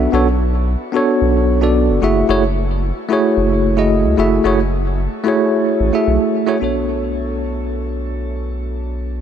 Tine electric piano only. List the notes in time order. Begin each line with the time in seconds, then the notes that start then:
Already playing: E5
0.12 B3 D4 F#4 A4 C#5
0.92 B3 D4 F#4 A4
0.97 C#5
1.61 B3 D4 F#4 A4 D5
2.02 A3 E4 F#4 G#4 E5
2.29 A3 E4 F#4 G#4 C#5
3.09 A3 E4 F#4 G#4
3.13 C#5
3.77 A3 E4 F#4 G#4 D#5
4.18 A3 E4 F#4 G#4 E5
4.44 A3 E4 F#4 G#4 C#5
5.24 A3 E4 F#4 G#4
5.28 C#5
5.93 A3 E4 F#4 G#4 E5
6.47 A3 E4 F#4 G#4 C#5
6.60 B3 D4 F#4 A4
6.64 C#5